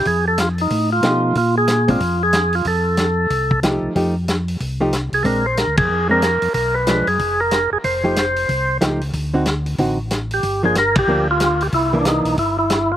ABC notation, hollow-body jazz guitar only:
X:1
M:4/4
L:1/8
Q:"Swing" 1/4=185
K:Fmix
V:1 name="Hollow-body jazz guitar"
z6 [F,A,EG]2 | z3 [_A,CD] z4 | z6 [F,A,EG]2 | [F,A,EG] z4 [F,A,EG] z2 |
[_A,CD] z4 [A,CD] z2 | z2 [F,^G,D] z4 z | z [F,A,EG] z4 [F,A,EG] z | z [D,CE^F] z2 [D,CEF] z3 |
z [F,B,D] z2 [F,B,D] z3 | z [=E,B,D]3 z4 |]